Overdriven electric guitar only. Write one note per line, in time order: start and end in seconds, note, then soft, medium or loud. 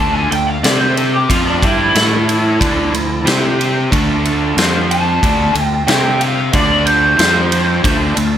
0.00 0.30 D3 medium
0.00 0.30 A3 loud
0.00 0.30 D4 loud
0.31 0.57 D3 medium
0.31 0.57 A3 medium
0.63 1.28 C4 medium
0.63 1.29 G4 loud
0.63 1.29 C5 medium
1.29 1.61 F3 loud
1.29 1.61 C4 medium
1.29 1.62 F4 loud
1.62 1.94 G3 medium
1.62 1.94 D4 medium
1.62 1.95 G4 medium
1.95 2.59 A3 medium
1.95 2.60 E4 medium
1.95 2.60 A4 loud
2.60 2.91 D3 medium
2.60 2.91 A3 medium
2.60 2.92 D4 loud
2.93 3.19 D3 medium
2.93 3.19 A3 medium
3.25 3.90 C4 medium
3.25 3.90 G4 medium
3.25 3.91 C5 medium
3.91 4.56 D3 medium
3.91 4.56 A3 medium
3.91 4.56 D4 loud
4.57 5.22 F3 medium
4.57 5.22 C4 loud
4.57 5.22 F4 medium
5.22 5.54 D3 medium
5.22 5.54 A3 medium
5.22 5.55 D4 medium
5.55 5.81 D3 medium
5.55 5.81 A3 medium
5.87 6.52 C4 medium
5.87 6.52 G4 loud
5.87 6.52 C5 loud
6.53 7.17 D3 loud
6.53 7.17 A3 medium
6.53 7.18 D4 medium
7.18 7.83 F3 medium
7.18 7.83 C4 loud
7.18 7.83 F4 loud
7.83 8.14 D3 medium
7.83 8.15 A3 medium
7.83 8.16 D4 loud
8.16 8.38 D3 medium
8.16 8.38 A3 medium